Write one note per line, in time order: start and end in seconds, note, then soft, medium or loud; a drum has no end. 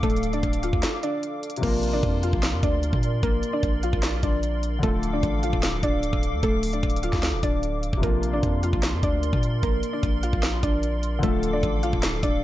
0.00 0.42 D1 loud
0.00 1.57 D3 medium
0.00 1.58 F3 medium
0.00 1.59 A3 medium
0.00 1.60 F4 medium
0.00 1.60 A4 medium
0.00 1.62 A4 medium
0.00 0.31 A4 loud
0.00 1.60 F5 medium
0.00 1.60 D6 medium
0.00 kick loud
0.00 closed hi-hat medium
0.04 0.32 A3 medium
0.10 closed hi-hat soft
0.16 closed hi-hat soft
0.23 closed hi-hat medium
0.33 0.43 D4 medium
0.33 0.42 D5 medium
0.33 closed hi-hat soft
0.43 0.72 D1 loud
0.43 kick loud
0.43 closed hi-hat medium
0.53 closed hi-hat soft
0.63 0.82 F4 medium
0.63 0.81 F5 medium
0.63 closed hi-hat medium
0.73 0.83 D2 loud
0.73 kick medium
0.83 snare loud
0.83 closed hi-hat medium
1.03 1.60 D4 medium
1.03 1.60 D5 medium
1.03 closed hi-hat medium
1.23 closed hi-hat medium
1.43 closed hi-hat soft
1.50 closed hi-hat medium
1.56 4.76 C3 medium
1.56 4.77 F3 medium
1.56 closed hi-hat medium
1.62 1.95 A#1 loud
1.62 4.79 A#3 medium
1.62 1.92 A#3 medium
1.62 4.80 D4 medium
1.62 1.91 A#4 loud
1.62 4.80 A#4 medium
1.62 4.80 D5 medium
1.62 4.80 C6 medium
1.62 kick loud
1.62 closed hi-hat medium
1.62 crash loud
1.67 4.81 F4 medium
1.83 closed hi-hat medium
1.93 2.03 A1 loud
1.93 2.03 D4 medium
1.93 2.02 D5 medium
2.03 2.32 F2 loud
2.03 kick loud
2.03 closed hi-hat medium
2.23 2.42 F4 medium
2.23 2.41 F5 medium
2.23 closed hi-hat medium
2.33 2.55 A#1 loud
2.33 kick medium
2.43 snare loud
2.43 closed hi-hat medium
2.53 2.63 F2 loud
2.63 2.92 D2 loud
2.63 3.20 D4 medium
2.63 3.20 D5 medium
2.63 kick loud
2.63 closed hi-hat medium
2.83 closed hi-hat medium
2.93 3.22 A#2 loud
2.93 kick loud
3.03 closed hi-hat medium
3.23 3.42 A#1 loud
3.23 3.52 A#3 medium
3.23 3.51 A#4 loud
3.23 kick loud
3.23 closed hi-hat medium
3.43 closed hi-hat medium
3.53 3.63 D4 medium
3.53 3.62 D5 medium
3.63 3.92 A#1 loud
3.63 kick loud
3.63 closed hi-hat medium
3.83 4.02 F4 medium
3.83 4.01 F5 medium
3.83 closed hi-hat medium
3.93 4.22 A#1 loud
3.93 kick medium
4.03 snare loud
4.03 closed hi-hat medium
4.23 4.81 A#1 loud
4.23 4.80 D4 medium
4.23 4.80 D5 medium
4.23 kick loud
4.23 closed hi-hat medium
4.43 closed hi-hat medium
4.63 closed hi-hat medium
4.79 7.97 D3 medium
4.79 7.98 F3 medium
4.83 5.22 D1 loud
4.83 7.99 A3 medium
4.83 5.12 A3 medium
4.83 8.00 F4 medium
4.83 8.00 A4 medium
4.83 5.11 A4 loud
4.83 8.00 F5 medium
4.83 8.00 D6 medium
4.83 kick loud
4.83 closed hi-hat medium
4.88 8.02 A4 medium
5.03 closed hi-hat medium
5.13 5.23 D4 medium
5.13 5.22 D5 medium
5.23 5.52 A1 loud
5.23 kick medium
5.23 closed hi-hat medium
5.43 5.62 F4 medium
5.43 5.61 F5 medium
5.43 closed hi-hat medium
5.53 5.82 D1 loud
5.53 kick medium
5.63 snare loud
5.63 closed hi-hat medium
5.83 6.12 D1 loud
5.83 6.40 D4 medium
5.83 6.40 D5 medium
5.83 kick loud
5.83 closed hi-hat medium
6.03 closed hi-hat medium
6.13 6.35 D1 loud
6.13 kick loud
6.23 closed hi-hat medium
6.33 6.43 D2 loud
6.43 6.82 D1 loud
6.43 6.72 A3 medium
6.43 6.71 A4 loud
6.43 kick loud
6.43 closed hi-hat medium
6.63 closed hi-hat medium
6.63 open hi-hat medium
6.73 6.83 D4 medium
6.73 6.82 D5 medium
6.73 closed hi-hat soft
6.83 7.12 D1 loud
6.83 kick loud
6.83 closed hi-hat soft
6.90 closed hi-hat medium
6.96 closed hi-hat medium
7.03 7.22 F4 medium
7.03 7.21 F5 medium
7.03 closed hi-hat medium
7.13 7.35 D2 loud
7.13 kick medium
7.13 snare medium
7.23 snare loud
7.23 closed hi-hat medium
7.33 7.43 D#1 loud
7.43 7.91 D1 loud
7.43 8.00 D4 medium
7.43 8.00 D5 medium
7.43 kick loud
7.43 closed hi-hat medium
7.63 closed hi-hat medium
7.83 closed hi-hat medium
7.93 8.03 D1 loud
7.93 kick loud
7.97 11.16 C3 medium
7.97 11.17 F3 medium
8.02 8.35 A#1 loud
8.02 11.19 A#3 medium
8.02 8.32 A#3 medium
8.02 11.20 D4 medium
8.02 11.20 A#4 medium
8.02 8.31 A#4 loud
8.02 11.20 D5 medium
8.02 11.20 C6 medium
8.02 kick loud
8.02 closed hi-hat medium
8.07 11.21 F4 medium
8.23 closed hi-hat medium
8.33 8.43 A1 loud
8.33 8.43 D4 medium
8.33 8.42 D5 medium
8.43 8.72 F2 loud
8.43 kick loud
8.43 closed hi-hat medium
8.63 8.82 F4 medium
8.63 8.81 F5 medium
8.63 closed hi-hat medium
8.73 8.95 A#1 loud
8.73 kick medium
8.83 snare loud
8.83 closed hi-hat medium
8.93 9.03 F2 loud
9.03 9.32 D2 loud
9.03 9.60 D4 medium
9.03 9.60 D5 medium
9.03 kick loud
9.03 closed hi-hat medium
9.23 closed hi-hat medium
9.33 9.62 A#2 loud
9.33 kick loud
9.43 closed hi-hat medium
9.63 9.82 A#1 loud
9.63 9.92 A#3 medium
9.63 9.91 A#4 loud
9.63 kick loud
9.63 closed hi-hat medium
9.83 closed hi-hat medium
9.93 10.03 D4 medium
9.93 10.02 D5 medium
10.03 10.32 A#1 loud
10.03 kick loud
10.03 closed hi-hat medium
10.23 10.42 F4 medium
10.23 10.41 F5 medium
10.23 closed hi-hat medium
10.33 10.62 A#1 loud
10.33 kick medium
10.43 snare loud
10.43 closed hi-hat medium
10.63 11.21 A#1 loud
10.63 11.20 D4 medium
10.63 11.20 D5 medium
10.63 kick loud
10.63 closed hi-hat medium
10.83 closed hi-hat medium
11.03 closed hi-hat medium
11.19 12.44 D3 medium
11.19 12.44 F3 medium
11.23 11.62 D1 loud
11.23 12.44 A3 medium
11.23 11.52 A3 medium
11.23 12.44 F4 medium
11.23 12.44 A4 medium
11.23 11.51 A4 loud
11.23 12.44 F5 medium
11.23 12.44 D6 medium
11.23 kick loud
11.23 closed hi-hat medium
11.28 12.44 A4 medium
11.43 closed hi-hat medium
11.53 11.63 D4 medium
11.53 11.62 D5 medium
11.63 11.92 A1 loud
11.63 kick medium
11.63 closed hi-hat medium
11.83 12.02 F4 medium
11.83 12.01 F5 medium
11.83 closed hi-hat medium
11.93 12.22 D1 loud
11.93 kick medium
12.03 snare loud
12.03 closed hi-hat medium
12.23 12.44 D1 loud
12.23 12.44 D4 medium
12.23 12.44 D5 medium
12.23 kick loud
12.23 closed hi-hat medium